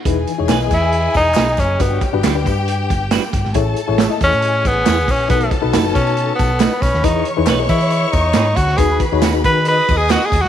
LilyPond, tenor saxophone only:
\new Staff \with { instrumentName = "Tenor saxophone" } { \time 4/4 \key e \major \tempo 4 = 137 r4. e'4 dis'4 cis'8 | b8 r2. r8 | r4. cis'4 b4 cis'8 | b8 r4 cis'4 b4 cis'8 |
dis'8 r4 e'4 dis'4 fis'8 | gis'8 r4 b'8 \tuplet 3/2 { b'4 gis'8 fis'8 gis'8 fis'8 } | }